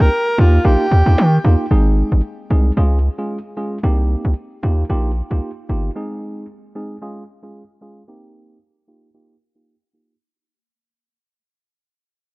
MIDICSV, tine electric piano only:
0, 0, Header, 1, 2, 480
1, 0, Start_track
1, 0, Tempo, 530973
1, 1546, Time_signature, 4, 2, 24, 8
1, 11156, End_track
2, 0, Start_track
2, 0, Title_t, "Tine electric piano"
2, 0, Program_c, 0, 4
2, 344, Note_on_c, 0, 58, 77
2, 345, Note_on_c, 0, 63, 71
2, 347, Note_on_c, 0, 65, 68
2, 349, Note_on_c, 0, 67, 88
2, 531, Note_off_c, 0, 58, 0
2, 532, Note_off_c, 0, 63, 0
2, 532, Note_off_c, 0, 65, 0
2, 533, Note_off_c, 0, 67, 0
2, 582, Note_on_c, 0, 58, 96
2, 584, Note_on_c, 0, 63, 89
2, 586, Note_on_c, 0, 65, 90
2, 587, Note_on_c, 0, 67, 109
2, 770, Note_off_c, 0, 58, 0
2, 771, Note_off_c, 0, 63, 0
2, 772, Note_off_c, 0, 65, 0
2, 772, Note_off_c, 0, 67, 0
2, 956, Note_on_c, 0, 58, 79
2, 956, Note_on_c, 0, 63, 70
2, 959, Note_on_c, 0, 65, 70
2, 961, Note_on_c, 0, 67, 89
2, 1131, Note_off_c, 0, 58, 0
2, 1131, Note_off_c, 0, 63, 0
2, 1132, Note_off_c, 0, 65, 0
2, 1133, Note_off_c, 0, 67, 0
2, 1304, Note_on_c, 0, 58, 81
2, 1306, Note_on_c, 0, 63, 75
2, 1307, Note_on_c, 0, 65, 73
2, 1309, Note_on_c, 0, 67, 86
2, 1491, Note_off_c, 0, 58, 0
2, 1492, Note_off_c, 0, 63, 0
2, 1492, Note_off_c, 0, 65, 0
2, 1493, Note_off_c, 0, 67, 0
2, 1543, Note_on_c, 0, 56, 86
2, 1545, Note_on_c, 0, 60, 77
2, 1547, Note_on_c, 0, 63, 81
2, 1549, Note_on_c, 0, 68, 96
2, 1990, Note_off_c, 0, 56, 0
2, 1991, Note_off_c, 0, 60, 0
2, 1992, Note_off_c, 0, 63, 0
2, 1993, Note_off_c, 0, 68, 0
2, 2264, Note_on_c, 0, 56, 75
2, 2265, Note_on_c, 0, 60, 69
2, 2268, Note_on_c, 0, 63, 66
2, 2270, Note_on_c, 0, 68, 82
2, 2451, Note_off_c, 0, 56, 0
2, 2452, Note_off_c, 0, 60, 0
2, 2453, Note_off_c, 0, 63, 0
2, 2454, Note_off_c, 0, 68, 0
2, 2503, Note_on_c, 0, 56, 94
2, 2505, Note_on_c, 0, 61, 87
2, 2508, Note_on_c, 0, 65, 82
2, 2510, Note_on_c, 0, 68, 101
2, 2690, Note_off_c, 0, 56, 0
2, 2691, Note_off_c, 0, 61, 0
2, 2693, Note_off_c, 0, 65, 0
2, 2694, Note_off_c, 0, 68, 0
2, 2875, Note_on_c, 0, 56, 74
2, 2877, Note_on_c, 0, 61, 67
2, 2879, Note_on_c, 0, 65, 69
2, 2881, Note_on_c, 0, 68, 80
2, 3051, Note_off_c, 0, 56, 0
2, 3052, Note_off_c, 0, 61, 0
2, 3052, Note_off_c, 0, 65, 0
2, 3053, Note_off_c, 0, 68, 0
2, 3224, Note_on_c, 0, 56, 74
2, 3226, Note_on_c, 0, 61, 68
2, 3228, Note_on_c, 0, 65, 66
2, 3229, Note_on_c, 0, 68, 81
2, 3411, Note_off_c, 0, 56, 0
2, 3412, Note_off_c, 0, 61, 0
2, 3413, Note_off_c, 0, 65, 0
2, 3413, Note_off_c, 0, 68, 0
2, 3464, Note_on_c, 0, 58, 83
2, 3465, Note_on_c, 0, 60, 77
2, 3468, Note_on_c, 0, 63, 83
2, 3470, Note_on_c, 0, 67, 95
2, 3910, Note_off_c, 0, 58, 0
2, 3911, Note_off_c, 0, 60, 0
2, 3912, Note_off_c, 0, 63, 0
2, 3913, Note_off_c, 0, 67, 0
2, 4184, Note_on_c, 0, 58, 75
2, 4186, Note_on_c, 0, 63, 68
2, 4187, Note_on_c, 0, 65, 67
2, 4189, Note_on_c, 0, 67, 80
2, 4371, Note_off_c, 0, 58, 0
2, 4372, Note_off_c, 0, 63, 0
2, 4372, Note_off_c, 0, 65, 0
2, 4374, Note_off_c, 0, 67, 0
2, 4423, Note_on_c, 0, 58, 94
2, 4425, Note_on_c, 0, 63, 83
2, 4426, Note_on_c, 0, 65, 84
2, 4428, Note_on_c, 0, 67, 101
2, 4610, Note_off_c, 0, 58, 0
2, 4611, Note_off_c, 0, 63, 0
2, 4612, Note_off_c, 0, 65, 0
2, 4613, Note_off_c, 0, 67, 0
2, 4795, Note_on_c, 0, 58, 72
2, 4797, Note_on_c, 0, 63, 66
2, 4799, Note_on_c, 0, 65, 69
2, 4801, Note_on_c, 0, 67, 81
2, 4970, Note_off_c, 0, 58, 0
2, 4971, Note_off_c, 0, 63, 0
2, 4972, Note_off_c, 0, 65, 0
2, 4973, Note_off_c, 0, 67, 0
2, 5144, Note_on_c, 0, 58, 74
2, 5147, Note_on_c, 0, 63, 71
2, 5148, Note_on_c, 0, 65, 71
2, 5150, Note_on_c, 0, 67, 85
2, 5331, Note_off_c, 0, 58, 0
2, 5332, Note_off_c, 0, 63, 0
2, 5333, Note_off_c, 0, 65, 0
2, 5334, Note_off_c, 0, 67, 0
2, 5385, Note_on_c, 0, 56, 87
2, 5387, Note_on_c, 0, 60, 77
2, 5389, Note_on_c, 0, 63, 77
2, 5391, Note_on_c, 0, 68, 90
2, 5831, Note_off_c, 0, 56, 0
2, 5832, Note_off_c, 0, 60, 0
2, 5833, Note_off_c, 0, 63, 0
2, 5834, Note_off_c, 0, 68, 0
2, 6105, Note_on_c, 0, 56, 74
2, 6107, Note_on_c, 0, 60, 66
2, 6110, Note_on_c, 0, 63, 69
2, 6110, Note_on_c, 0, 68, 83
2, 6291, Note_off_c, 0, 56, 0
2, 6292, Note_off_c, 0, 60, 0
2, 6294, Note_off_c, 0, 63, 0
2, 6294, Note_off_c, 0, 68, 0
2, 6343, Note_on_c, 0, 56, 91
2, 6346, Note_on_c, 0, 61, 84
2, 6348, Note_on_c, 0, 65, 83
2, 6349, Note_on_c, 0, 68, 102
2, 6531, Note_off_c, 0, 56, 0
2, 6532, Note_off_c, 0, 61, 0
2, 6533, Note_off_c, 0, 65, 0
2, 6533, Note_off_c, 0, 68, 0
2, 6716, Note_on_c, 0, 56, 71
2, 6718, Note_on_c, 0, 61, 63
2, 6719, Note_on_c, 0, 65, 64
2, 6721, Note_on_c, 0, 68, 81
2, 6891, Note_off_c, 0, 56, 0
2, 6892, Note_off_c, 0, 61, 0
2, 6892, Note_off_c, 0, 65, 0
2, 6893, Note_off_c, 0, 68, 0
2, 7063, Note_on_c, 0, 56, 71
2, 7065, Note_on_c, 0, 61, 69
2, 7067, Note_on_c, 0, 65, 72
2, 7068, Note_on_c, 0, 68, 83
2, 7250, Note_off_c, 0, 56, 0
2, 7251, Note_off_c, 0, 61, 0
2, 7252, Note_off_c, 0, 65, 0
2, 7253, Note_off_c, 0, 68, 0
2, 7301, Note_on_c, 0, 58, 85
2, 7303, Note_on_c, 0, 60, 78
2, 7305, Note_on_c, 0, 63, 76
2, 7308, Note_on_c, 0, 67, 94
2, 7749, Note_off_c, 0, 58, 0
2, 7750, Note_off_c, 0, 60, 0
2, 7751, Note_off_c, 0, 63, 0
2, 7752, Note_off_c, 0, 67, 0
2, 8024, Note_on_c, 0, 58, 69
2, 8026, Note_on_c, 0, 63, 67
2, 8028, Note_on_c, 0, 65, 67
2, 8029, Note_on_c, 0, 67, 81
2, 8211, Note_off_c, 0, 58, 0
2, 8212, Note_off_c, 0, 63, 0
2, 8213, Note_off_c, 0, 65, 0
2, 8213, Note_off_c, 0, 67, 0
2, 8263, Note_on_c, 0, 58, 88
2, 8264, Note_on_c, 0, 63, 80
2, 8266, Note_on_c, 0, 65, 82
2, 8267, Note_on_c, 0, 67, 96
2, 8450, Note_off_c, 0, 58, 0
2, 8451, Note_off_c, 0, 63, 0
2, 8452, Note_off_c, 0, 65, 0
2, 8452, Note_off_c, 0, 67, 0
2, 8634, Note_on_c, 0, 58, 67
2, 8636, Note_on_c, 0, 63, 65
2, 8638, Note_on_c, 0, 65, 66
2, 8640, Note_on_c, 0, 67, 80
2, 8810, Note_off_c, 0, 58, 0
2, 8811, Note_off_c, 0, 63, 0
2, 8812, Note_off_c, 0, 65, 0
2, 8813, Note_off_c, 0, 67, 0
2, 8983, Note_on_c, 0, 58, 70
2, 8984, Note_on_c, 0, 63, 67
2, 8986, Note_on_c, 0, 65, 65
2, 8988, Note_on_c, 0, 67, 81
2, 9170, Note_off_c, 0, 58, 0
2, 9171, Note_off_c, 0, 63, 0
2, 9172, Note_off_c, 0, 65, 0
2, 9173, Note_off_c, 0, 67, 0
2, 11156, End_track
0, 0, End_of_file